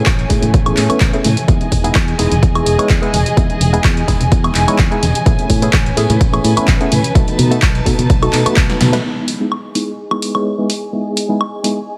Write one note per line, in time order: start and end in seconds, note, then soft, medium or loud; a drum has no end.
0.00 1.47 A3 medium
0.00 1.45 C#4 medium
0.00 1.45 G#5 medium
0.06 0.24 A1 medium
0.06 kick loud
0.06 clap loud
0.06 closed hi-hat soft
0.06 tambourine medium
0.06 high conga medium
0.06 high woodblock medium
0.19 closed hi-hat soft
0.19 tambourine soft
0.29 0.39 A2 medium
0.29 0.44 A3 medium
0.29 0.44 B3 medium
0.29 0.44 C#4 medium
0.29 0.44 E4 medium
0.29 0.45 G#4 loud
0.29 kick medium
0.29 open hi-hat loud
0.29 tambourine medium
0.42 0.50 A2 medium
0.42 closed hi-hat soft
0.42 tambourine soft
0.42 high conga loud
0.42 low conga medium
0.54 0.71 A1 medium
0.54 kick loud
0.54 closed hi-hat soft
0.54 tambourine medium
0.65 0.87 A3 medium
0.65 0.87 B3 medium
0.65 0.87 C#4 medium
0.65 0.87 E4 medium
0.65 0.87 G#4 loud
0.65 closed hi-hat soft
0.65 tambourine soft
0.65 high woodblock medium
0.76 0.86 A2 medium
0.76 clap medium
0.76 open hi-hat loud
0.76 tambourine medium
0.89 1.10 A3 medium
0.89 1.10 B3 medium
0.89 1.10 C#4 medium
0.89 1.10 E4 medium
0.89 1.10 B4 medium
0.89 muted fingered electric bass stroke soft
0.89 closed hi-hat soft
0.89 tambourine soft
0.89 high conga medium
0.89 high woodblock medium
1.00 1.10 A1 medium
1.00 kick loud
1.00 clap loud
1.00 closed hi-hat soft
1.13 1.26 A3 medium
1.13 1.27 B3 medium
1.13 1.27 C#4 medium
1.13 1.27 E4 medium
1.13 1.27 G#4 loud
1.13 closed hi-hat soft
1.13 tambourine soft
1.24 1.34 A2 medium
1.24 open hi-hat loud
1.24 tambourine medium
1.24 high conga medium
1.24 low conga medium
1.37 closed hi-hat medium
1.37 tambourine soft
1.48 1.57 E2 loud
1.48 1.81 G#3 medium
1.48 1.81 B3 medium
1.48 1.81 D#4 medium
1.48 1.81 E4 medium
1.48 5.23 G#4 medium
1.48 1.82 G#4 medium
1.48 5.23 D#5 medium
1.48 7.11 G#5 medium
1.48 kick loud
1.48 closed hi-hat soft
1.48 tambourine soft
1.61 closed hi-hat soft
1.61 high conga medium
1.72 1.89 E1 loud
1.72 kick medium
1.72 open hi-hat loud
1.72 tambourine medium
1.72 low conga medium
1.84 1.97 G#3 medium
1.84 1.97 B3 medium
1.84 1.97 D#4 medium
1.84 1.97 E4 medium
1.84 1.97 G#4 loud
1.84 closed hi-hat soft
1.84 tambourine soft
1.95 2.13 E2 medium
1.95 kick loud
1.95 clap loud
1.95 closed hi-hat soft
1.95 high woodblock medium
2.08 closed hi-hat soft
2.08 tambourine soft
2.18 2.28 E1 medium
2.18 2.33 G#3 medium
2.18 2.33 B3 medium
2.18 2.33 D#4 medium
2.18 2.33 E4 medium
2.18 2.33 G#4 loud
2.18 open hi-hat loud
2.18 tambourine medium
2.31 2.39 E1 medium
2.31 closed hi-hat soft
2.31 tambourine soft
2.31 high conga medium
2.31 low conga medium
2.43 2.60 E2 medium
2.43 kick loud
2.43 closed hi-hat soft
2.43 tambourine medium
2.55 2.76 G#3 medium
2.55 2.76 B3 medium
2.55 2.76 D#4 medium
2.55 2.76 E4 medium
2.55 2.76 G#4 medium
2.55 closed hi-hat soft
2.55 tambourine soft
2.55 high woodblock medium
2.66 2.75 E1 medium
2.66 open hi-hat loud
2.66 tambourine medium
2.78 2.99 G#3 medium
2.78 2.99 B3 medium
2.78 2.99 D#4 medium
2.78 2.99 E4 medium
2.78 2.99 C#5 loud
2.78 muted fingered electric bass stroke soft
2.78 closed hi-hat soft
2.78 tambourine soft
2.78 high conga medium
2.78 high woodblock medium
2.89 2.99 E2 loud
2.89 kick loud
2.89 clap loud
2.89 closed hi-hat soft
3.02 3.15 G#3 medium
3.02 3.15 B3 medium
3.02 3.15 D#4 medium
3.02 3.16 E4 medium
3.02 3.16 G#4 loud
3.02 closed hi-hat soft
3.13 3.22 E1 medium
3.13 open hi-hat loud
3.13 tambourine medium
3.13 high conga medium
3.13 low conga medium
3.26 closed hi-hat medium
3.26 tambourine soft
3.37 3.46 E2 loud
3.37 3.70 G#3 medium
3.37 3.70 B3 medium
3.37 3.70 D#4 medium
3.37 3.70 E4 medium
3.37 3.71 G#4 medium
3.37 kick loud
3.37 closed hi-hat soft
3.37 tambourine soft
3.50 muted fingered electric bass stroke soft
3.50 closed hi-hat soft
3.50 high conga medium
3.60 3.78 E1 loud
3.60 open hi-hat loud
3.60 tambourine loud
3.60 low conga medium
3.73 3.86 G#3 medium
3.73 3.86 B3 medium
3.73 3.86 D#4 medium
3.73 3.87 E4 medium
3.73 3.87 G#4 loud
3.73 closed hi-hat soft
3.73 tambourine soft
3.84 4.02 E2 medium
3.84 kick loud
3.84 clap loud
3.84 closed hi-hat medium
3.84 tambourine soft
3.84 high conga medium
3.84 high woodblock medium
3.97 closed hi-hat soft
3.97 tambourine soft
4.07 4.17 E1 medium
4.07 4.22 G#3 medium
4.07 4.22 B3 medium
4.07 4.22 D#4 medium
4.07 4.22 E4 medium
4.07 4.22 G#4 loud
4.07 kick medium
4.07 open hi-hat medium
4.07 tambourine medium
4.20 4.28 E1 medium
4.20 closed hi-hat soft
4.20 tambourine soft
4.20 high conga medium
4.20 low conga medium
4.32 4.49 E2 medium
4.32 kick loud
4.32 closed hi-hat medium
4.32 tambourine soft
4.43 4.65 G#3 medium
4.43 4.65 B3 medium
4.43 4.65 D#4 medium
4.43 4.65 E4 medium
4.43 4.65 G#4 loud
4.43 closed hi-hat soft
4.43 tambourine soft
4.43 high woodblock medium
4.55 4.64 E1 medium
4.55 clap medium
4.55 open hi-hat loud
4.55 tambourine medium
4.67 4.87 G#3 medium
4.67 4.88 B3 medium
4.67 4.88 D#4 medium
4.67 4.88 E4 medium
4.67 4.88 C#5 loud
4.67 muted fingered electric bass stroke soft
4.67 closed hi-hat medium
4.67 tambourine soft
4.67 high conga medium
4.67 high woodblock medium
4.79 4.88 E2 loud
4.79 kick loud
4.79 clap loud
4.79 closed hi-hat soft
4.91 5.04 G#3 medium
4.91 5.04 B3 medium
4.91 5.05 D#4 medium
4.91 5.05 E4 medium
4.91 5.05 G#4 medium
4.91 closed hi-hat soft
5.03 5.12 E1 medium
5.03 open hi-hat loud
5.03 tambourine medium
5.03 high conga medium
5.03 low conga medium
5.15 closed hi-hat medium
5.15 tambourine soft
5.26 5.35 A1 loud
5.26 5.59 A3 medium
5.26 5.59 B3 medium
5.26 5.59 C#4 medium
5.26 7.13 C#4 medium
5.26 5.59 E4 medium
5.26 5.60 G#4 medium
5.26 9.00 B4 medium
5.26 kick loud
5.26 closed hi-hat medium
5.26 tambourine medium
5.39 closed hi-hat soft
5.39 high conga medium
5.50 5.67 A2 loud
5.50 kick medium
5.50 open hi-hat loud
5.50 tambourine loud
5.50 low conga medium
5.62 5.75 A3 medium
5.62 5.75 B3 medium
5.62 5.75 C#4 medium
5.62 5.76 E4 medium
5.62 5.76 G#4 loud
5.62 closed hi-hat medium
5.62 tambourine soft
5.73 5.91 A1 medium
5.73 kick loud
5.73 clap loud
5.73 closed hi-hat medium
5.73 tambourine medium
5.73 high conga medium
5.73 high woodblock medium
5.86 closed hi-hat soft
5.86 tambourine soft
5.97 6.06 A2 medium
5.97 6.11 A3 medium
5.97 6.11 B3 medium
5.97 6.11 C#4 medium
5.97 6.11 E4 medium
5.97 6.12 G#4 loud
5.97 open hi-hat loud
5.97 tambourine medium
6.09 6.17 A2 loud
6.09 closed hi-hat medium
6.09 tambourine soft
6.09 high conga medium
6.09 low conga medium
6.21 6.38 A1 medium
6.21 kick loud
6.21 closed hi-hat medium
6.21 tambourine medium
6.33 6.54 A3 medium
6.33 6.54 B3 medium
6.33 6.54 C#4 medium
6.33 6.54 E4 medium
6.33 6.54 G#4 loud
6.33 closed hi-hat soft
6.33 tambourine soft
6.33 high woodblock medium
6.44 6.53 A2 medium
6.44 open hi-hat medium
6.44 tambourine medium
6.57 6.77 A3 medium
6.57 6.77 B3 medium
6.57 6.77 C#4 medium
6.57 6.77 E4 medium
6.57 6.77 B4 loud
6.57 muted fingered electric bass stroke soft
6.57 closed hi-hat medium
6.57 tambourine soft
6.57 high conga medium
6.57 high woodblock medium
6.68 6.77 A1 loud
6.68 kick loud
6.68 clap loud
6.68 closed hi-hat medium
6.68 tambourine medium
6.80 6.93 A3 medium
6.80 6.94 B3 medium
6.80 6.94 C#4 medium
6.80 6.94 E4 medium
6.80 6.94 G#4 loud
6.80 closed hi-hat soft
6.91 7.01 A2 medium
6.91 open hi-hat loud
6.91 tambourine medium
6.91 high conga medium
6.91 low conga medium
7.04 closed hi-hat medium
7.04 tambourine soft
7.15 7.24 B1 loud
7.15 7.48 A3 medium
7.15 7.48 B3 medium
7.15 7.49 D#4 medium
7.15 9.02 D#4 medium
7.15 7.49 F#4 medium
7.15 7.49 A4 medium
7.15 9.02 A5 medium
7.15 kick loud
7.15 closed hi-hat medium
7.27 muted fingered electric bass stroke soft
7.27 closed hi-hat soft
7.27 tambourine soft
7.27 high conga medium
7.39 7.56 B2 loud
7.39 open hi-hat loud
7.39 tambourine medium
7.39 low conga medium
7.51 7.64 A3 medium
7.51 7.64 B3 medium
7.51 7.64 D#4 medium
7.51 7.65 F#4 medium
7.51 7.65 A4 loud
7.51 closed hi-hat medium
7.51 tambourine soft
7.62 7.80 B1 medium
7.62 kick loud
7.62 clap loud
7.62 closed hi-hat medium
7.62 high woodblock medium
7.75 closed hi-hat soft
7.75 tambourine soft
7.86 7.95 B2 medium
7.86 8.00 A3 medium
7.86 8.00 B3 medium
7.86 8.00 D#4 medium
7.86 8.00 F#4 medium
7.86 8.01 A4 loud
7.86 kick medium
7.86 open hi-hat loud
7.86 tambourine medium
7.98 8.06 B2 medium
7.98 closed hi-hat medium
7.98 tambourine soft
7.98 high conga medium
7.98 low conga medium
8.10 8.27 B1 loud
8.10 kick loud
8.10 closed hi-hat medium
8.10 tambourine medium
8.22 8.43 A3 medium
8.22 8.43 B3 medium
8.22 8.43 D#4 medium
8.22 8.43 F#4 medium
8.22 8.43 A4 loud
8.22 closed hi-hat soft
8.22 tambourine soft
8.22 high woodblock medium
8.33 8.42 B2 medium
8.33 clap medium
8.33 open hi-hat loud
8.33 tambourine medium
8.46 8.90 A3 medium
8.46 8.90 B3 medium
8.46 8.90 D#4 medium
8.46 8.90 F#4 medium
8.46 8.90 B4 medium
8.46 muted fingered electric bass stroke soft
8.46 closed hi-hat medium
8.46 tambourine soft
8.46 high conga medium
8.46 high woodblock medium
8.56 8.66 B1 loud
8.56 kick loud
8.56 clap loud
8.56 closed hi-hat medium
8.70 snare soft
8.70 closed hi-hat soft
8.70 tambourine soft
8.81 8.98 B2 medium
8.81 snare medium
8.81 open hi-hat medium
8.81 tambourine loud
8.81 high conga medium
8.81 low conga medium
8.93 9.02 A3 medium
8.93 9.02 B3 medium
8.93 9.03 D#4 medium
8.93 9.03 F#4 medium
8.93 9.03 B4 loud
8.93 snare medium
8.93 closed hi-hat medium
8.93 tambourine soft
9.04 9.37 G#3 medium
9.04 9.38 B3 medium
9.04 9.38 D#4 medium
9.04 9.38 E4 medium
9.04 11.98 G#4 medium
9.04 9.38 G#4 medium
9.04 11.98 D#5 medium
9.04 11.98 G#5 medium
9.28 open hi-hat medium
9.40 9.53 G#3 medium
9.40 9.53 B3 medium
9.40 9.54 D#4 medium
9.40 9.54 E4 medium
9.40 9.54 G#4 medium
9.52 high woodblock medium
9.75 9.89 G#3 medium
9.75 9.89 B3 medium
9.75 9.89 D#4 medium
9.75 9.90 E4 medium
9.75 9.90 G#4 medium
9.75 open hi-hat medium
10.11 10.32 G#3 medium
10.11 10.32 B3 medium
10.11 10.32 D#4 medium
10.11 10.32 E4 medium
10.11 10.32 G#4 medium
10.11 high woodblock medium
10.22 open hi-hat medium
10.34 10.55 G#3 medium
10.34 10.55 B3 medium
10.34 10.55 D#4 medium
10.34 10.55 E4 medium
10.34 10.55 C#5 medium
10.34 high woodblock medium
10.58 10.71 G#3 medium
10.58 10.72 B3 medium
10.58 10.72 D#4 medium
10.58 10.72 E4 medium
10.58 10.72 G#4 medium
10.70 open hi-hat medium
10.92 11.26 G#3 medium
10.92 11.26 B3 medium
10.92 11.26 D#4 medium
10.92 11.26 E4 medium
10.92 11.26 G#4 medium
11.17 open hi-hat loud
11.29 11.42 G#3 medium
11.29 11.42 B3 medium
11.29 11.42 D#4 medium
11.29 11.43 E4 medium
11.29 11.43 G#4 medium
11.41 high woodblock medium
11.64 11.78 G#3 medium
11.64 11.78 B3 medium
11.64 11.78 D#4 medium
11.64 11.78 E4 medium
11.64 11.78 G#4 medium
11.64 open hi-hat medium